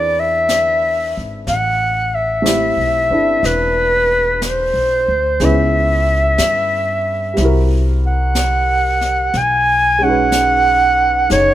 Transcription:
Already playing: upright bass E2, upright piano C4 D4 E4 G#4 B4, clarinet D5
0.20 clarinet E5
0.49 brush sweep, snare, hi-hat pedal
1.17 upright bass G#1
1.47 upright bass A1, clarinet F#5, brush sweep, snare
2.15 clarinet E5
2.42 upright piano A3 C4 E4 G4, brush sweep, snare, hi-hat pedal
2.77 upright bass B1
3.10 upright bass G1, upright piano C4 D4 E4 A4
3.43 upright bass E1, clarinet B4, brush sweep, snare
4.42 clarinet C5, brush sweep, snare, hi-hat pedal
4.74 upright bass B1
5.08 upright bass D2
5.40 upright bass C#2, upright piano B3 C#4 E4 G#4 B4, brush sweep, snare
5.44 clarinet E5
6.38 upright bass G2, brush sweep, snare, hi-hat pedal
7.34 upright piano G3 C4, brush sweep, snare
7.38 upright bass C2, upright piano E4
7.43 upright piano F#4 A#4
8.07 clarinet F#5
8.35 brush sweep, snare, hi-hat pedal
9.01 snare
9.34 upright bass B1, clarinet G#5, brush sweep, snare
9.99 upright piano G#3 C#4
10.03 upright piano D#4 F#4, clarinet F#5
10.09 upright piano B4
10.32 brush sweep, snare, hi-hat pedal
11.29 upright bass F#1, upright piano D#4 G#4 C#5, clarinet C#5, brush sweep, snare

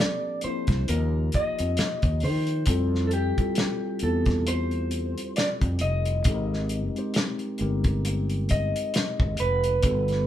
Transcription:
Already playing: tine electric piano F3 A#3 C4 D4 G4 A4 A5, clean electric guitar D5
0.00 snare
0.41 tine electric piano F3 A#3 C4 D4, clean electric guitar C5, muted fretless electric bass stroke, closed hi-hat
0.46 tine electric piano E4
0.67 fretless electric bass C2, kick, snare, closed hi-hat
0.88 fretless electric bass D#2, tine electric piano F3 A#3 D#4 F4 G4, clean electric guitar A#4, closed hi-hat
1.32 clean electric guitar D#5, kick, closed hi-hat
1.59 fretless electric bass F2, closed hi-hat
1.77 muted fretless electric bass stroke, snare, closed hi-hat
2.02 fretless electric bass D#2, kick, closed hi-hat
2.20 fretless electric bass D#3, open hi-hat
2.24 clean electric guitar C5
2.47 closed hi-hat
2.66 fretless electric bass F2, tine electric piano G3 C4 E4 F4 A4, kick, closed hi-hat
2.95 snare
3.07 clean electric guitar A4, closed hi-hat
3.13 clean electric guitar G4
3.38 tine electric piano G3 C4 E4 F4 A4, kick, closed hi-hat
3.55 snare, closed hi-hat
3.99 fretless electric bass E2, tine electric piano G3 C4 E4, closed hi-hat
4.03 tine electric piano F4 G4, clean electric guitar A4
4.26 kick, snare, closed hi-hat
4.47 clean electric guitar C5, closed hi-hat
4.71 closed hi-hat
4.91 closed hi-hat
5.18 closed hi-hat
5.36 clean electric guitar D5, snare, closed hi-hat
5.61 fretless electric bass F2, kick, closed hi-hat
5.79 fretless electric bass F1, clean electric guitar D#5, closed hi-hat
6.05 closed hi-hat
6.24 fretless electric bass G#1, tine electric piano G#3 C4 D#4 G4 A4, kick, closed hi-hat
6.34 tine electric piano A#4
6.54 snare
6.69 closed hi-hat
6.95 tine electric piano G#3 C4 D#4 G4 C5, closed hi-hat
7.14 snare, closed hi-hat
7.39 closed hi-hat
7.58 fretless electric bass G1, tine electric piano G#3 C4 D#4 G4, closed hi-hat
7.62 tine electric piano A#4
7.84 kick, closed hi-hat
8.05 closed hi-hat
8.30 closed hi-hat
8.49 clean electric guitar D#5, kick, closed hi-hat
8.76 closed hi-hat
8.94 snare, closed hi-hat
9.20 fretless electric bass G#1, kick
9.37 fretless electric bass F1, clean electric guitar B4, closed hi-hat
9.64 closed hi-hat
9.82 fretless electric bass G1, tine electric piano G3 B3 D4 F#4 A4, kick, closed hi-hat
10.08 snare, closed hi-hat

